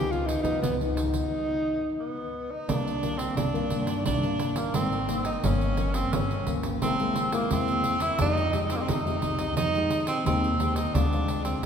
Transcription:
Already playing: C#2 C#3 F3 B3 D#4 G4
0.11 F4, pandeiro
0.26 D#4, pandeiro
0.42 C#2 F3 B3 D#4, pandeiro
0.62 C#2 G#2 B3, pandeiro
0.80 F3 B3 D#4, pandeiro
0.95 D#4, pandeiro
1.14 pandeiro
2.00 B3
2.51 D#4
2.68 C2 C3 D#3 A#3 D4, pandeiro
2.88 pandeiro
3.02 D#3 A#3 D4, pandeiro
3.18 C4, pandeiro
3.37 C2 G2 D4, pandeiro
3.54 D#3 A#3 D4, pandeiro
3.70 G2, pandeiro
3.87 pandeiro
4.05 C2 C3 D4, pandeiro
4.23 D#3 A#3 D4, pandeiro
4.39 pandeiro
4.56 A#3, pandeiro
4.74 G#1 G2 D#3 A#3 C4 D4, pandeiro
4.92 pandeiro
5.08 D#3 A#3 D4, pandeiro
5.25 D#4, pandeiro
5.43 G1 G2 F3 A#3 C#4, pandeiro
5.61 pandeiro
5.77 F3 A#3 C#4, pandeiro
5.94 C4, pandeiro
6.13 G1 G2 C#4, pandeiro
6.31 pandeiro
6.46 C#2 F3 A#3 C#4, pandeiro
6.63 pandeiro
6.82 C2 C3 G#3 A#3 C4 E4, pandeiro
6.99 G#3 A#3 E4, pandeiro
7.16 pandeiro
7.31 G#3 A#3 E4, pandeiro
7.51 E2 G#3 A#3 C4 E4, pandeiro
7.68 pandeiro
7.84 pandeiro
8.00 E4, pandeiro
8.18 F2 F3 G#3 D#4 G4, pandeiro
8.37 pandeiro
8.53 G#3 D#4 G4, pandeiro
8.70 C4, pandeiro
8.76 A#3
8.81 C4
8.88 F2 C3 D#4, pandeiro
9.06 G#3 D#4 G4, pandeiro
9.22 C2, pandeiro
9.39 pandeiro
9.56 F2 F3 D#4, pandeiro
9.75 G#3 D#4 G4, pandeiro
9.90 pandeiro
10.07 C4, pandeiro
10.25 D#2 C3 G#3 C4 D#4 G4, pandeiro
10.44 pandeiro
10.59 G#3 D#4 G4, pandeiro
10.76 D#4, pandeiro
10.94 D2 D3 G#3 C4 D4 F4, pandeiro
11.13 G#3 C4 F4, pandeiro
11.28 pandeiro
11.45 C4, pandeiro

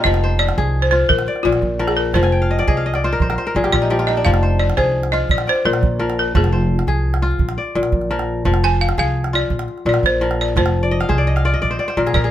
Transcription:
Already playing: A#3 C4 D#4 F4 G4 G#4 A#4 C5
0.04 F1 F3 D#5, calabash thump, calabash click
0.14 calabash click
0.24 C5
0.39 D5
0.49 calabash click
0.57 C2 G#4, calabash thump, calabash click
0.82 C5
0.91 F4 C5
1.09 A#1 A#4, calabash thump
1.19 calabash click
1.27 D5, calabash click
1.36 calabash click
1.43 A#1 A#2 F4
1.53 calabash click
1.62 A#1, calabash thump
1.79 F3 A#4, calabash click
1.88 G#4, calabash click
1.97 A#4
2.06 calabash click
2.14 F1 F3 C5, calabash thump, calabash click
2.23 G#5, calabash click
2.32 G5
2.42 F5
2.51 D#5
2.59 D5, calabash click
2.67 C2 G#4 D#5, calabash thump, calabash click
2.77 F5
2.86 D#5
2.94 D5, calabash click
3.04 F4 C5
3.13 A#4
3.20 A#1 C5, calabash thump
3.30 A#4, calabash click
3.38 C5, calabash click
3.46 A#4, calabash click
3.55 A#1 A#2 G#4
3.64 G4, calabash click
3.72 A#1 F4 D5, calabash thump
3.82 D#4
3.90 F3 G4, calabash click
3.99 F4, calabash click
4.07 D#4 D#5
4.17 D4, calabash click
4.25 F1 F3 F5, calabash thump, calabash click
4.34 calabash click
4.43 C5
4.59 D5
4.70 calabash click
4.77 C2 G#4 C5, calabash thump, calabash click
5.03 calabash click
5.12 F4 D#5
5.29 A#1 D5, calabash thump
5.38 calabash click
5.47 C5 D5, calabash click
5.55 calabash click
5.65 A#1 A#2 A#4
5.73 calabash click
5.82 A#1, calabash thump
5.99 F3 A#4, calabash click
6.10 calabash click
6.19 A#4
6.35 F1 F3 G#4, calabash thump
6.44 calabash click
6.53 C5
6.79 calabash click
6.87 C2 G#4, calabash thump
7.14 calabash click
7.22 F4
7.31 calabash click
7.39 A#1, calabash thump
7.49 calabash click
7.58 D5
7.75 A#1 A#2
7.83 calabash click
7.92 A#1, calabash thump
8.01 calabash click
8.11 F3 A#4
8.19 calabash click
8.45 F1 F3, calabash thump, calabash click
8.54 calabash click
8.64 C5 G#5
8.81 F5
8.89 calabash click
8.98 C2 G#4 F5, calabash thump, calabash click
9.24 calabash click
9.33 F4 D5
9.50 A#1, calabash thump
9.59 calabash click
9.68 calabash click
9.78 calabash click
9.85 A#1 A#2 D5
9.94 calabash click
10.03 A#1 C5, calabash thump
10.21 F3 A#4, calabash click
10.31 calabash click
10.41 D5
10.48 calabash click
10.56 F1 F3 C5, calabash thump, calabash click
10.66 calabash click
10.83 D5
10.91 D#5
11.00 F5, calabash click
11.09 C2 G#4 C5, calabash thump, calabash click
11.18 D5
11.27 D#5
11.36 F5, calabash click
11.45 F4 D5
11.54 D#5
11.62 A#1 D5, calabash thump
11.71 C5
11.79 D5, calabash click
11.88 C5, calabash click
11.97 A#1 A#2 A#4
12.06 G#4, calabash click
12.14 A#1 A#4 D5, calabash thump
12.24 G#4

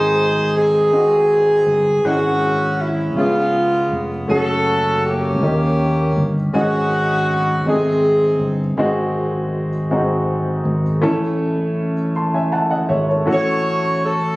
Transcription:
Already playing: G#1 G#2 G#3 C4 D#4 G#4 C5
0.57 C4 D#4 G#4
0.92 G#3 C4 D#4 F#4
1.66 G1
2.04 G#1 G#2 G#3 C#4 E4 F#4
2.13 G#4
2.81 E4
3.16 C#2 C#3 B3 C#4 F4 G#4
3.20 G#3 B3
3.91 F1
4.28 F#1 A3 C#4 F#4 G#4 A4
4.36 A4
5.05 A#3 C#4 G4
5.41 D#2 D#3 A#3 C#4 D#4 G4
6.16 G1
6.53 G#1 G#2 G#3 C#4 D#4 F#4 G#4
7.66 G#1 C3 G#3 A3 C4 D#4 G#4
7.73 C4
8.39 G1
8.77 G#1 G#3 C4 D#4 F#4
9.91 G#2 G#3 C4 D#4 F#4
10.65 G#1
11.02 A1 A2 A3 C#4 E4 A4
12.16 A5 C6
12.34 E5 G#5
12.52 F#5 A5
12.70 D#5 F#5
12.89 G#1 C#5 E5
13.09 A4 C#5
13.26 A1 A2 A3 C#4 F#4 A4
13.30 F#4 A4 C#5
14.06 A4

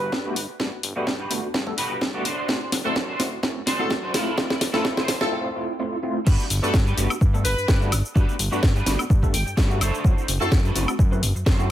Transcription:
Already playing: G1 B4
0.12 G2, kick, snare
0.25 A3 B3 D4 F#4 G4 B4
0.36 G1, open hi-hat
0.49 muted clean electric guitar stroke
0.59 G2 A3 B3 D4 F#4, kick, snare
0.83 G1, open hi-hat
0.96 G2 A3 B3 D4 F#4 G4 B4
1.07 G2, kick, snare
1.19 F#4 G4 B4
1.30 G1 A3 B3 D4 F#4, open hi-hat
1.43 muted clean electric guitar stroke
1.54 G2, kick, snare
1.67 A3 B3 D4 A4, kick
1.77 G1 F#4 G4 B4, open hi-hat
2.01 G2, kick, snare
2.14 A3 B3 D4 F#4 G4 A4
2.25 F#1 D4 F#4 C5, open hi-hat
2.48 F#2 A3 C4 E4 F#4, kick, snare
2.72 F#1, snare, open hi-hat
2.84 F#2 A3 C4 D4 E4 F#4 A4 C5
2.96 F#2, kick, snare
3.08 D4 F#4 C5
3.19 F#1 A3 C4 E4 F#4, snare, open hi-hat
3.32 muted clean electric guitar stroke
3.43 F#2 A3 C4 E4 F#4, kick, snare
3.66 F#1 D4 F#4 C5, snare, open hi-hat
3.79 A3 C4 E4 F#4 A4
3.90 F#2, kick, snare
4.02 D4 F#4 C5
4.13 F1 A3 C4 E4 F4 A4, snare, open hi-hat
4.37 F2 A3 C4 E4 F4, kick, snare
4.50 snare
4.61 F1, snare, open hi-hat
4.73 F2 A3 C4 E4 F4 A4, snare
4.84 F2 A3 C4 E4 F4, kick, snare
4.97 E4 F4 C5, snare
5.08 F1, snare, open hi-hat
5.21 A3 C4 E4 F4 A4, muted clean electric guitar stroke, snare
5.32 A3 C4 E4 F4
5.56 A3 C4 E4 F4
5.79 A3 C4 E4 F4
6.03 A3 C4 E4 F4
6.26 G2 A3 B3 D4 F#4 G4 B4, kick, crash, shaker
6.40 shaker
6.50 G1, open hi-hat, shaker
6.62 G2 A3 B3 D4 F#4 G4 A4 B4, shaker
6.74 G2, kick, snare, shaker
6.86 D4 F#4 G4 B4, shaker
6.97 G1 A3 B3 D4 F#4, open hi-hat, shaker
7.10 high woodblock, shaker
7.21 G2, kick, shaker
7.33 A3 B3 D4 A4, muted clean electric guitar stroke, shaker
7.44 G1 B4, muted clean electric guitar stroke, open hi-hat, shaker
7.57 G2, muted clean electric guitar stroke, shaker
7.68 G2 D4 F#4 G4 B4, kick, snare, shaker
7.81 A3 B3 D4 F#4, shaker
7.92 G1, open hi-hat, high woodblock, shaker
8.05 shaker
8.15 G2 A3 B3 D4 F#4 G4 B4, kick, shaker
8.29 shaker
8.39 G1, open hi-hat, shaker
8.51 G2 A3 B3 D4 F#4 G4 B4, shaker
8.63 G2, kick, snare, shaker
8.75 D4 F#4 G4 B4, shaker
8.86 G1 A3 B3 D4 F#4, snare, open hi-hat, shaker
8.99 high woodblock, shaker
9.10 G2, kick, shaker
9.22 A3 B3 D4 A4, muted clean electric guitar stroke, kick, shaker
9.33 G1 G5, muted clean electric guitar stroke, open hi-hat, shaker
9.46 G2, muted clean electric guitar stroke, shaker
9.57 G2 D4 F#4 G4 B4 F#5, kick, snare, shaker
9.70 A3 B3 D4 F#4, shaker
9.80 F#1 D4 F#4 A4 C5 E5, open hi-hat, high woodblock, shaker
9.94 shaker
10.04 F#2 A3 C4 E4 F#4, kick, shaker
10.18 shaker
10.28 F#1, open hi-hat, shaker
10.40 F#2 A3 C4 D4 E4 F#4 A4 C5, shaker
10.52 F#2, kick, snare, shaker
10.64 D4 F#4 A4 B4, shaker
10.75 F#1 A3 C4 E4 F#4, open hi-hat, shaker
10.88 high woodblock, shaker
10.99 F#2, kick, shaker
11.11 A3 C4 E4 B4, muted clean electric guitar stroke, shaker
11.22 F#1, muted clean electric guitar stroke, open hi-hat, shaker
11.35 F#2, muted clean electric guitar stroke, shaker
11.46 F#2 D4 F#4 A4 C5, kick, snare, shaker
11.59 A3 C4 E4 F#4, shaker

